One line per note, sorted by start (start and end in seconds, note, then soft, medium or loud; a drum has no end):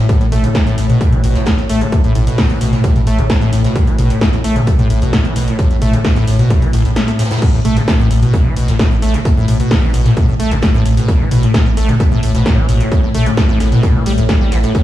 0.00 7.41 A2 medium
0.09 0.19 A2 medium
0.09 kick loud
0.09 closed hi-hat medium
0.21 0.31 A1 medium
0.21 0.27 A2 medium
0.21 closed hi-hat soft
0.32 0.44 A1 loud
0.32 0.45 A3 loud
0.32 closed hi-hat medium
0.32 mid tom medium
0.32 open hi-hat loud
0.44 0.50 C3 medium
0.44 closed hi-hat medium
0.55 0.59 A3 medium
0.55 kick loud
0.55 snare loud
0.55 closed hi-hat medium
0.55 closed hi-hat soft
0.67 0.77 A1 medium
0.67 0.76 A2 loud
0.67 closed hi-hat medium
0.67 closed hi-hat soft
0.78 0.89 A1 loud
0.78 0.88 A2 medium
0.78 closed hi-hat medium
0.78 open hi-hat loud
0.90 1.02 B2 medium
0.90 closed hi-hat medium
0.90 mid tom medium
1.01 1.14 A2 medium
1.01 kick loud
1.01 closed hi-hat medium
1.12 1.23 A1 medium
1.12 1.22 E3 loud
1.12 closed hi-hat medium
1.12 mid tom loud
1.23 1.35 A1 loud
1.23 1.37 B2 medium
1.23 closed hi-hat medium
1.23 open hi-hat loud
1.35 1.46 A1 medium
1.35 1.45 A2 medium
1.35 snare soft
1.35 closed hi-hat medium
1.46 1.56 A2 medium
1.46 kick loud
1.46 snare loud
1.46 closed hi-hat medium
1.58 1.69 A1 medium
1.58 1.64 A2 medium
1.58 closed hi-hat soft
1.69 1.81 A1 loud
1.69 1.83 A3 loud
1.69 closed hi-hat medium
1.69 open hi-hat loud
1.81 1.87 C3 medium
1.81 closed hi-hat medium
1.92 1.96 A3 medium
1.92 kick loud
1.92 closed hi-hat medium
2.04 2.15 A1 medium
2.04 2.13 A2 loud
2.04 closed hi-hat medium
2.15 2.27 A1 loud
2.15 2.25 A2 medium
2.15 closed hi-hat medium
2.15 mid tom loud
2.15 open hi-hat loud
2.27 2.40 B2 medium
2.27 closed hi-hat medium
2.38 2.51 A2 medium
2.38 kick loud
2.38 snare loud
2.38 closed hi-hat medium
2.38 open hi-hat medium
2.50 2.60 A1 medium
2.50 2.59 E3 loud
2.50 closed hi-hat medium
2.61 2.73 A1 loud
2.61 2.74 B2 medium
2.61 closed hi-hat medium
2.61 open hi-hat loud
2.73 2.82 A2 medium
2.73 snare soft
2.73 closed hi-hat soft
2.73 mid tom medium
2.84 2.94 A2 medium
2.84 kick loud
2.84 closed hi-hat medium
2.96 3.06 A1 medium
2.96 3.02 A2 medium
2.96 closed hi-hat soft
2.96 mid tom loud
3.07 3.18 A1 loud
3.07 3.20 A3 loud
3.07 closed hi-hat medium
3.07 open hi-hat loud
3.19 3.30 A1 medium
3.19 3.25 C3 medium
3.19 closed hi-hat soft
3.29 3.34 A3 medium
3.29 kick loud
3.29 snare loud
3.29 closed hi-hat medium
3.42 3.52 A1 medium
3.42 3.51 A2 loud
3.42 snare soft
3.42 closed hi-hat medium
3.53 3.64 A1 loud
3.53 3.62 A2 medium
3.53 closed hi-hat medium
3.53 open hi-hat loud
3.64 3.77 B2 medium
3.64 snare soft
3.64 closed hi-hat soft
3.76 3.89 A2 medium
3.76 kick loud
3.76 closed hi-hat medium
3.87 3.98 A1 medium
3.87 3.97 E3 loud
3.87 closed hi-hat medium
3.87 closed hi-hat soft
3.98 4.10 A1 loud
3.98 4.12 B2 medium
3.98 closed hi-hat medium
3.98 mid tom medium
3.98 open hi-hat loud
4.10 4.19 A2 medium
4.10 closed hi-hat medium
4.21 4.31 A2 medium
4.21 kick loud
4.21 snare loud
4.21 closed hi-hat medium
4.33 4.44 A1 medium
4.33 4.39 A2 medium
4.33 closed hi-hat soft
4.44 4.56 A1 loud
4.44 4.58 A3 loud
4.44 closed hi-hat medium
4.44 open hi-hat loud
4.56 4.62 C3 medium
4.56 closed hi-hat medium
4.56 mid tom medium
4.67 4.71 A3 medium
4.67 kick loud
4.67 closed hi-hat medium
4.79 4.90 A1 medium
4.79 4.88 A2 loud
4.79 closed hi-hat medium
4.79 mid tom loud
4.90 5.01 A1 loud
4.90 5.00 A2 medium
4.90 closed hi-hat medium
4.90 open hi-hat medium
5.02 5.13 A1 medium
5.02 5.14 B2 medium
5.02 closed hi-hat medium
5.13 5.26 A2 medium
5.13 kick loud
5.13 snare loud
5.13 closed hi-hat medium
5.25 5.35 A1 medium
5.25 5.34 E3 loud
5.25 closed hi-hat medium
5.36 5.47 A1 loud
5.36 5.49 B2 medium
5.36 closed hi-hat medium
5.36 open hi-hat loud
5.48 5.57 A2 medium
5.48 closed hi-hat medium
5.59 5.69 A2 medium
5.59 kick loud
5.59 closed hi-hat medium
5.70 5.81 A1 medium
5.70 5.77 A2 medium
5.70 closed hi-hat medium
5.81 5.93 A1 loud
5.81 5.95 A3 loud
5.81 closed hi-hat medium
5.81 mid tom medium
5.81 open hi-hat loud
5.93 6.00 C3 medium
5.93 closed hi-hat medium
6.04 6.08 A3 medium
6.04 kick loud
6.04 snare loud
6.04 closed hi-hat medium
6.04 open hi-hat medium
6.16 6.27 A1 medium
6.16 6.26 A2 loud
6.16 closed hi-hat medium
6.27 6.39 A1 loud
6.27 6.37 A2 medium
6.27 closed hi-hat medium
6.27 open hi-hat loud
6.39 6.52 B2 medium
6.39 snare medium
6.39 closed hi-hat medium
6.39 mid tom medium
6.50 6.64 A2 medium
6.50 kick loud
6.50 closed hi-hat medium
6.62 6.73 A1 medium
6.62 6.71 E3 loud
6.62 closed hi-hat medium
6.62 mid tom medium
6.73 6.84 A1 loud
6.73 6.83 A2 loud
6.73 closed hi-hat medium
6.73 open hi-hat loud
6.85 6.96 A1 medium
6.85 6.91 A2 medium
6.85 closed hi-hat medium
6.96 7.03 A2 medium
6.96 snare loud
6.96 closed hi-hat medium
7.08 7.12 A3 medium
7.08 closed hi-hat medium
7.19 7.23 A2 medium
7.19 snare medium
7.19 closed hi-hat medium
7.19 open hi-hat loud
7.25 snare medium
7.25 closed hi-hat medium
7.31 7.37 A2 loud
7.31 snare medium
7.31 closed hi-hat medium
7.36 snare medium
7.36 closed hi-hat medium
7.42 7.52 A2 medium
7.42 14.83 A2 medium
7.42 kick loud
7.42 closed hi-hat medium
7.42 crash loud
7.53 7.64 A1 medium
7.53 7.60 A2 medium
7.53 closed hi-hat soft
7.64 7.76 A1 loud
7.64 7.78 A3 loud
7.64 closed hi-hat medium
7.64 mid tom medium
7.64 open hi-hat loud
7.77 7.83 C3 medium
7.77 closed hi-hat medium
7.88 7.92 A3 medium
7.88 kick loud
7.88 snare loud
7.88 closed hi-hat medium
7.99 8.10 A1 medium
7.99 8.09 A2 loud
7.99 closed hi-hat soft
8.10 8.22 A1 loud
8.10 8.20 A2 medium
8.10 closed hi-hat medium
8.10 open hi-hat medium
8.22 8.35 B2 medium
8.22 closed hi-hat medium
8.22 mid tom medium
8.34 8.47 A2 medium
8.34 kick loud
8.34 closed hi-hat medium
8.45 8.56 A1 medium
8.45 8.55 E3 loud
8.45 mid tom medium
8.56 8.68 A1 loud
8.56 8.70 B2 medium
8.56 closed hi-hat medium
8.56 open hi-hat loud
8.68 8.79 A1 medium
8.68 8.77 A2 medium
8.68 snare soft
8.68 closed hi-hat medium
8.79 8.89 A2 medium
8.79 kick loud
8.79 snare loud
8.79 closed hi-hat medium
8.91 9.02 A1 medium
8.91 8.97 A2 medium
9.02 9.14 A1 loud
9.02 9.15 A3 loud
9.02 closed hi-hat medium
9.02 open hi-hat loud
9.14 9.20 C3 medium
9.14 closed hi-hat medium
9.25 9.29 A3 medium
9.25 kick loud
9.25 closed hi-hat medium
9.37 9.48 A1 medium
9.37 9.46 A2 loud
9.48 9.60 A1 loud
9.48 9.58 A2 medium
9.48 closed hi-hat medium
9.48 mid tom medium
9.48 open hi-hat loud
9.60 9.72 B2 medium
9.60 closed hi-hat medium
9.71 9.84 A2 medium
9.71 kick loud
9.71 snare loud
9.71 closed hi-hat medium
9.71 open hi-hat medium
9.83 9.93 A1 medium
9.83 9.92 E3 loud
9.93 10.05 A1 loud
9.93 10.07 B2 medium
9.93 closed hi-hat medium
9.93 open hi-hat loud
10.05 10.15 A2 medium
10.05 snare soft
10.05 closed hi-hat medium
10.05 mid tom medium
10.17 10.26 A2 medium
10.17 kick loud
10.17 closed hi-hat medium
10.28 10.39 A1 medium
10.28 10.35 A2 medium
10.28 mid tom medium
10.40 10.51 A1 loud
10.40 10.53 A3 loud
10.40 closed hi-hat medium
10.40 open hi-hat loud
10.51 10.62 A1 medium
10.51 10.58 C3 medium
10.51 closed hi-hat medium
10.62 10.67 A3 medium
10.62 kick loud
10.62 snare loud
10.62 closed hi-hat loud
10.62 closed hi-hat medium
10.74 10.85 A1 medium
10.74 10.84 A2 loud
10.74 snare soft
10.85 10.97 A1 loud
10.85 10.95 A2 medium
10.85 closed hi-hat medium
10.85 open hi-hat loud
10.97 11.10 B2 medium
10.97 snare soft
10.97 closed hi-hat medium
11.08 11.22 A2 medium
11.08 kick loud
11.08 closed hi-hat medium
11.20 11.31 A1 medium
11.20 11.29 E3 loud
11.20 closed hi-hat soft
11.31 11.43 A1 loud
11.31 11.45 B2 medium
11.31 closed hi-hat medium
11.31 mid tom medium
11.31 open hi-hat loud
11.43 11.52 A2 medium
11.43 closed hi-hat medium
11.54 11.64 A2 medium
11.54 kick loud
11.54 snare loud
11.54 closed hi-hat medium
11.65 11.77 A1 medium
11.65 11.72 A2 medium
11.65 closed hi-hat soft
11.77 11.89 A1 loud
11.77 11.90 A3 loud
11.77 closed hi-hat medium
11.77 open hi-hat loud
11.89 11.95 C3 medium
11.89 closed hi-hat medium
11.89 mid tom medium
12.00 12.04 A3 medium
12.00 kick loud
12.00 closed hi-hat medium
12.12 12.22 A1 medium
12.12 12.21 A2 loud
12.12 mid tom medium
12.22 12.34 A1 loud
12.22 12.33 A2 medium
12.22 closed hi-hat medium
12.22 open hi-hat loud
12.35 12.46 A1 medium
12.35 12.47 B2 medium
12.35 snare medium
12.35 closed hi-hat medium
12.46 12.59 A2 medium
12.46 kick loud
12.46 snare loud
12.46 closed hi-hat loud
12.46 closed hi-hat medium
12.58 12.68 A1 medium
12.58 12.67 E3 loud
12.69 12.80 A1 loud
12.69 12.82 B2 medium
12.69 closed hi-hat medium
12.69 open hi-hat loud
12.80 12.90 A2 medium
12.80 closed hi-hat medium
12.92 13.01 A2 medium
12.92 kick loud
12.92 closed hi-hat medium
13.03 13.14 A1 medium
13.03 13.10 A2 medium
13.15 13.26 A1 loud
13.15 13.28 A3 loud
13.15 closed hi-hat medium
13.15 mid tom medium
13.15 open hi-hat loud
13.26 13.32 C3 medium
13.26 closed hi-hat medium
13.37 13.41 A3 medium
13.37 kick loud
13.37 snare loud
13.37 closed hi-hat medium
13.37 open hi-hat medium
13.49 13.60 A1 medium
13.49 13.58 A2 loud
13.60 13.72 A1 loud
13.60 13.70 A2 medium
13.60 snare medium
13.60 closed hi-hat medium
13.60 open hi-hat loud
13.72 13.85 B2 medium
13.72 snare soft
13.72 closed hi-hat medium
13.72 mid tom medium
13.83 13.97 A2 medium
13.83 kick loud
13.83 closed hi-hat medium
13.95 14.06 A1 medium
13.95 14.04 E3 loud
13.95 mid tom loud
14.06 14.17 A1 loud
14.06 14.13 G3 loud
14.06 closed hi-hat medium
14.06 open hi-hat loud
14.18 14.29 A1 medium
14.18 14.24 A2 medium
14.18 closed hi-hat medium
14.29 14.33 A2 medium
14.29 kick loud
14.29 snare loud
14.29 closed hi-hat medium
14.41 14.51 A1 medium
14.41 14.54 G3 medium
14.41 snare soft
14.52 14.64 A1 loud
14.52 14.58 E3 loud
14.52 snare loud
14.52 closed hi-hat medium
14.52 open hi-hat loud
14.63 14.73 A2 medium
14.63 closed hi-hat soft
14.63 closed hi-hat medium
14.75 14.83 A2 medium
14.75 kick loud
14.75 closed hi-hat medium